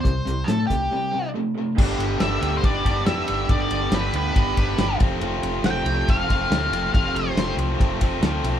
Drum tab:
CC |--------|x-------|--------|--------|
RD |--------|-xxxxxxx|xxxxxxxx|xxxxxxxx|
HH |xxxx----|--------|--------|--------|
SD |--o-----|--o---o-|--o---o-|--o---o-|
BD |o--o----|o---oo--|o---oo-o|----oo--|

CC |--------|
RD |xxxxxxxx|
HH |--------|
SD |--o---o-|
BD |o---oo--|